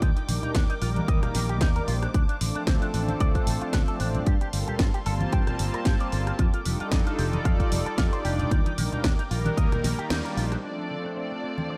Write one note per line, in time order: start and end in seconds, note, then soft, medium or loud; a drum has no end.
0.00 0.11 D#2 loud
0.00 0.09 D#4 medium
0.00 2.12 A#4 medium
0.00 2.10 G5 medium
0.00 4.23 D6 medium
0.00 kick loud
0.00 closed hi-hat medium
0.16 0.22 D#4 medium
0.16 closed hi-hat soft
0.28 0.38 A#1 medium
0.28 0.33 D#3 medium
0.28 0.40 G3 medium
0.28 0.40 A#3 medium
0.28 0.40 D4 medium
0.28 0.40 D#4 medium
0.28 0.40 A#4 medium
0.28 open hi-hat loud
0.43 0.53 G3 loud
0.43 0.53 A#3 medium
0.43 0.53 D4 medium
0.43 0.49 D#4 medium
0.43 0.53 D#4 medium
0.43 0.53 A#4 loud
0.43 closed hi-hat soft
0.43 low conga medium
0.55 0.64 D#2 medium
0.55 0.62 D4 medium
0.55 kick loud
0.55 snare loud
0.55 closed hi-hat medium
0.70 0.73 D#4 loud
0.70 closed hi-hat soft
0.81 0.99 A#1 medium
0.81 1.73 D#3 medium
0.81 1.72 G3 loud
0.81 1.73 A#3 medium
0.81 0.89 F4 loud
0.81 1.73 A#4 loud
0.81 open hi-hat medium
0.96 1.00 D4 medium
0.96 closed hi-hat soft
0.96 high conga medium
1.08 1.17 D#2 medium
1.08 1.19 D#5 loud
1.08 kick loud
1.08 closed hi-hat medium
1.22 1.29 D#4 medium
1.22 cross-stick medium
1.22 closed hi-hat soft
1.22 low conga medium
1.34 1.61 A#1 medium
1.34 1.39 D#3 medium
1.34 snare soft
1.34 open hi-hat loud
1.49 1.55 G4 loud
1.49 closed hi-hat soft
1.61 1.79 D#2 medium
1.61 1.69 D#4 loud
1.61 kick loud
1.61 snare loud
1.61 closed hi-hat medium
1.76 1.85 G3 medium
1.76 1.85 A#3 medium
1.76 1.85 D4 medium
1.76 1.85 D#4 medium
1.76 1.82 A#4 medium
1.76 1.85 D5 loud
1.76 closed hi-hat soft
1.88 2.05 A#1 medium
1.88 2.00 G3 medium
1.88 2.00 A#3 medium
1.88 2.00 D4 medium
1.88 2.00 D#4 medium
1.88 1.95 F4 loud
1.88 2.00 C5 loud
1.88 open hi-hat medium
2.02 2.06 D4 medium
2.02 cross-stick medium
2.02 closed hi-hat soft
2.14 2.24 D2 medium
2.14 2.22 D4 medium
2.14 4.25 C5 medium
2.14 6.35 F5 medium
2.14 6.35 A5 medium
2.14 kick loud
2.14 closed hi-hat medium
2.29 2.35 D4 medium
2.29 closed hi-hat soft
2.40 2.50 A1 medium
2.40 2.45 D3 medium
2.40 2.52 F3 medium
2.40 2.52 A3 medium
2.40 2.52 C4 medium
2.40 2.52 D4 medium
2.40 2.52 A4 medium
2.40 open hi-hat loud
2.55 2.91 F3 medium
2.55 2.91 A3 medium
2.55 2.91 C4 medium
2.55 2.61 D4 medium
2.55 2.91 D4 medium
2.55 2.91 A4 medium
2.55 closed hi-hat soft
2.67 2.77 D2 medium
2.67 2.75 C4 medium
2.67 kick loud
2.67 snare loud
2.67 closed hi-hat medium
2.82 2.86 D4 medium
2.82 closed hi-hat soft
2.93 3.12 A1 medium
2.93 3.84 F3 loud
2.93 3.85 A3 medium
2.93 3.85 C4 medium
2.93 3.01 D4 loud
2.93 3.85 D4 medium
2.93 3.85 A4 loud
2.93 open hi-hat medium
3.08 3.12 C4 medium
3.08 closed hi-hat soft
3.08 high conga medium
3.20 3.30 D2 medium
3.20 3.32 D5 loud
3.20 kick loud
3.20 closed hi-hat medium
3.35 3.41 D4 medium
3.35 kick medium
3.35 closed hi-hat soft
3.47 3.56 A1 medium
3.47 3.51 D3 medium
3.47 open hi-hat loud
3.62 3.68 F4 loud
3.62 muted fingered electric bass stroke soft
3.62 closed hi-hat soft
3.73 3.83 D2 medium
3.73 3.81 D4 loud
3.73 kick loud
3.73 snare loud
3.73 closed hi-hat medium
3.88 4.25 F3 medium
3.88 4.25 A3 medium
3.88 4.25 C4 medium
3.88 4.25 D4 medium
3.88 3.94 A4 medium
3.88 4.26 D5 loud
3.88 closed hi-hat soft
4.00 4.18 A1 medium
4.00 4.08 D4 medium
4.00 open hi-hat medium
4.14 4.18 C4 medium
4.14 closed hi-hat soft
4.14 low conga medium
4.26 4.36 G2 loud
4.26 6.37 A#3 medium
4.26 4.34 G4 medium
4.26 6.37 C6 medium
4.26 kick loud
4.26 closed hi-hat medium
4.41 4.47 G4 medium
4.41 closed hi-hat soft
4.53 4.62 G1 medium
4.53 4.64 G3 medium
4.53 4.58 G3 medium
4.53 4.64 A#3 medium
4.53 4.64 C4 medium
4.53 4.64 F4 medium
4.53 4.65 A4 medium
4.53 open hi-hat medium
4.67 4.77 G3 loud
4.67 4.77 A#3 medium
4.67 4.78 C4 medium
4.67 4.78 F4 medium
4.67 4.74 G4 medium
4.67 4.78 A4 loud
4.67 muted fingered electric bass stroke soft
4.67 closed hi-hat soft
4.67 low conga medium
4.79 4.89 G2 medium
4.79 4.87 F4 medium
4.79 kick loud
4.79 snare loud
4.79 closed hi-hat medium
4.94 4.98 G4 loud
4.94 closed hi-hat soft
5.05 5.24 G1 medium
5.05 6.37 G3 loud
5.05 6.37 A#3 medium
5.05 6.38 C4 medium
5.05 6.38 F4 medium
5.05 5.14 A4 loud
5.05 6.38 A5 loud
5.05 open hi-hat medium
5.20 5.25 F4 medium
5.20 closed hi-hat soft
5.20 high conga medium
5.33 5.42 G2 medium
5.33 5.44 G5 loud
5.33 kick loud
5.33 closed hi-hat medium
5.47 5.53 G4 medium
5.47 cross-stick medium
5.47 closed hi-hat soft
5.47 low conga medium
5.59 5.69 G1 medium
5.59 5.64 G3 medium
5.59 open hi-hat loud
5.74 5.80 A#4 loud
5.74 closed hi-hat soft
5.85 5.95 G2 medium
5.85 5.93 G4 loud
5.85 kick loud
5.85 snare loud
5.85 closed hi-hat medium
6.00 6.07 D5 medium
6.00 closed hi-hat soft
6.12 6.30 G1 medium
6.12 6.20 A4 medium
6.12 open hi-hat medium
6.27 6.31 F4 medium
6.27 cross-stick medium
6.27 closed hi-hat soft
6.39 6.48 F2 loud
6.39 6.47 F4 medium
6.39 8.49 A4 medium
6.39 10.60 G5 medium
6.39 10.60 D6 medium
6.39 kick loud
6.39 closed hi-hat medium
6.54 6.60 F4 medium
6.54 closed hi-hat soft
6.65 6.75 F1 medium
6.65 6.70 F3 medium
6.65 6.77 G3 medium
6.65 6.77 D4 medium
6.65 6.77 D#4 medium
6.65 6.77 F4 medium
6.65 6.77 A4 medium
6.65 open hi-hat loud
6.80 7.16 G3 medium
6.80 7.16 D4 medium
6.80 7.16 D#4 medium
6.80 6.86 F4 loud
6.80 7.16 F4 medium
6.80 7.16 A4 loud
6.80 muted fingered electric bass stroke soft
6.80 closed hi-hat soft
6.92 7.01 F2 medium
6.92 6.99 D#4 medium
6.92 kick loud
6.92 snare loud
6.92 closed hi-hat medium
7.07 7.10 F4 loud
7.07 closed hi-hat soft
7.18 7.37 F1 loud
7.18 8.09 G3 medium
7.18 8.10 D#4 medium
7.18 8.10 F4 medium
7.18 7.26 G4 medium
7.18 8.10 A4 loud
7.18 8.09 D5 medium
7.18 open hi-hat medium
7.33 7.37 D#4 medium
7.33 closed hi-hat soft
7.33 high conga medium
7.45 7.54 F2 medium
7.45 7.56 F5 loud
7.45 kick loud
7.45 closed hi-hat medium
7.60 7.66 F4 medium
7.60 kick medium
7.60 closed hi-hat soft
7.72 7.81 F1 medium
7.72 7.76 F3 medium
7.72 open hi-hat medium
7.86 7.92 A4 loud
7.86 closed hi-hat soft
7.98 8.08 F2 medium
7.98 8.06 F4 loud
7.98 kick loud
7.98 snare loud
7.98 closed hi-hat medium
8.13 8.50 G3 medium
8.13 8.50 D4 medium
8.13 8.50 D#4 medium
8.13 8.50 F4 medium
8.13 8.19 C5 medium
8.13 8.50 D5 loud
8.13 closed hi-hat soft
8.25 8.43 F1 medium
8.25 8.32 G4 loud
8.25 open hi-hat medium
8.39 8.43 D#4 medium
8.39 closed hi-hat soft
8.39 low conga medium
8.51 8.61 D#2 loud
8.51 8.59 D#4 medium
8.51 10.62 A#4 medium
8.51 kick loud
8.51 closed hi-hat medium
8.66 8.72 D#4 medium
8.66 closed hi-hat soft
8.66 high conga medium
8.78 8.87 A#1 medium
8.78 8.82 D#3 medium
8.78 8.89 G3 medium
8.78 8.89 A#3 medium
8.78 8.89 D4 medium
8.78 8.89 D#4 medium
8.78 8.89 A#4 medium
8.78 open hi-hat loud
8.92 9.02 G3 loud
8.92 9.02 A#3 medium
8.92 9.02 D4 medium
8.92 8.99 D#4 loud
8.92 9.03 D#4 medium
8.92 9.03 A#4 loud
8.92 closed hi-hat soft
8.92 low conga medium
9.04 9.14 D#2 medium
9.04 9.12 D4 medium
9.04 kick loud
9.04 snare loud
9.04 closed hi-hat medium
9.19 9.23 D#4 loud
9.19 closed hi-hat soft
9.30 9.49 A#1 loud
9.30 10.23 D#3 medium
9.30 10.22 G3 loud
9.30 10.22 A#3 medium
9.30 9.38 F4 loud
9.30 10.23 A#4 loud
9.30 open hi-hat medium
9.45 9.49 D4 medium
9.45 closed hi-hat soft
9.45 high conga medium
9.57 9.67 D#2 medium
9.57 9.69 D#5 loud
9.57 kick loud
9.57 closed hi-hat medium
9.72 9.78 D#4 medium
9.72 cross-stick medium
9.72 closed hi-hat soft
9.72 low conga medium
9.84 9.93 A#1 medium
9.84 9.89 D#3 medium
9.84 snare soft
9.84 open hi-hat loud
9.99 10.05 G4 loud
9.99 muted fingered electric bass stroke soft
9.99 closed hi-hat soft
10.10 10.20 D#2 loud
10.10 10.18 D#4 loud
10.10 snare loud
10.10 closed hi-hat medium
10.25 10.34 G3 medium
10.25 10.34 A#3 medium
10.25 10.34 D4 medium
10.25 10.35 D#4 medium
10.25 10.31 A#4 medium
10.25 10.35 D5 loud
10.25 closed hi-hat soft
10.37 10.55 A#1 loud
10.37 10.49 G3 medium
10.37 10.49 A#3 medium
10.37 10.49 D4 medium
10.37 10.49 D#4 medium
10.37 10.44 F4 loud
10.37 10.49 C5 loud
10.37 open hi-hat medium
10.52 10.55 D4 medium
10.52 cross-stick medium
10.52 closed hi-hat soft
10.63 11.77 F3 medium
10.63 11.77 A3 medium
10.63 11.77 C4 medium
10.63 10.71 D4 medium
10.63 11.77 D4 medium
10.63 11.77 F4 medium
10.63 11.77 A4 medium
10.63 11.77 C5 medium
10.63 11.77 D5 medium
10.63 11.13 D5 loud
10.63 11.77 A5 medium
10.78 10.84 D4 medium
10.90 10.95 D3 medium
11.05 11.11 D4 medium
11.17 11.24 C4 medium
11.17 11.77 D5 loud
11.31 11.35 D4 medium
11.43 11.51 D4 medium
11.58 11.62 C4 medium
11.58 high conga medium
11.70 11.77 D5 medium